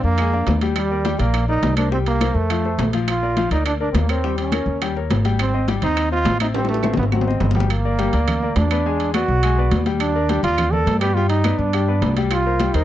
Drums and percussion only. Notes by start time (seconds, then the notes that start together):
0.04 high conga
0.18 high bongo, high conga, high timbale, claves
0.33 high bongo, high conga
0.47 high bongo, low bongo, high conga, high timbale, low timbale
0.61 high bongo, high conga, high timbale
0.76 high bongo, high conga, high timbale, claves
0.91 high conga
1.05 high bongo, high conga, high timbale, low timbale
1.19 high timbale
1.34 high bongo, high conga, high timbale, claves
1.49 high conga
1.63 high bongo, low bongo, high conga, high timbale, low timbale
1.77 high conga, high timbale, claves
1.92 high bongo
2.06 high bongo, high conga, high timbale
2.21 high bongo, high conga, high timbale, low timbale, claves
2.35 high conga
2.50 high bongo, high conga, high timbale, claves
2.64 high bongo, high conga
2.78 high bongo, low bongo, high conga, high timbale, low timbale
2.93 high bongo, high conga, high timbale
3.08 high bongo, high conga, high timbale, claves
3.23 high conga
3.37 high bongo, high conga, high timbale, low timbale
3.51 high timbale
3.66 high bongo, high conga, high timbale, claves
3.80 high conga
3.94 high bongo, low bongo, high conga, high timbale, low timbale
4.09 high timbale, claves
4.23 high bongo, high conga
4.38 high bongo, high conga, high timbale
4.52 high bongo, high conga, high timbale, low timbale, claves
4.66 high conga
4.81 high bongo, high conga, high timbale, claves
4.95 high bongo, high conga
5.10 high bongo, low bongo, high conga, high timbale, low timbale
5.25 high bongo, high conga, high timbale
5.39 high bongo, high timbale, claves
5.53 high conga
5.68 high bongo, high conga, high timbale, low timbale
5.82 high timbale
5.97 high bongo, high conga, high timbale, claves
6.11 high conga
6.25 high bongo, low bongo, high conga, high timbale, low timbale
6.40 high conga, high timbale, claves
6.54 high bongo, high conga, high timbale
6.65 high bongo
6.69 high conga, high timbale
6.74 high bongo
6.83 high bongo, high conga, high timbale, claves
6.93 low bongo, high timbale
7.03 low bongo
7.12 low bongo, high conga, claves
7.21 low bongo
7.27 low bongo, high conga
7.40 low bongo, low conga, low timbale
7.51 low bongo, low timbale
7.56 low bongo, low conga
7.70 high conga, high timbale, claves
7.85 high conga
7.99 high conga, high timbale, low timbale
8.13 high timbale
8.28 high conga, low conga, high timbale, claves
8.43 high conga
8.56 high conga, high timbale, low timbale
8.71 high timbale, claves
8.86 high conga
9.00 high conga, high timbale
9.14 high conga, high timbale, low timbale, claves
9.43 high conga, high timbale, claves
9.58 high conga
9.71 high conga, high timbale, low timbale
9.86 high conga, high timbale
10.00 high conga, high timbale, claves
10.15 high conga
10.29 high conga, high timbale, low timbale
10.44 high timbale
10.58 high conga, low conga, high timbale, claves
10.73 high conga, low conga
10.87 high conga, high timbale, low timbale
11.01 high timbale, claves
11.16 high conga
11.30 high conga, high timbale
11.44 high conga, high timbale, low timbale, claves
11.59 high conga
11.73 high conga, high timbale, claves
11.88 high conga
12.02 high conga, high timbale, low timbale
12.17 high conga, high timbale
12.31 high bongo, high conga, high timbale, claves
12.45 high conga
12.60 high bongo, high conga, high timbale, low timbale
12.74 high timbale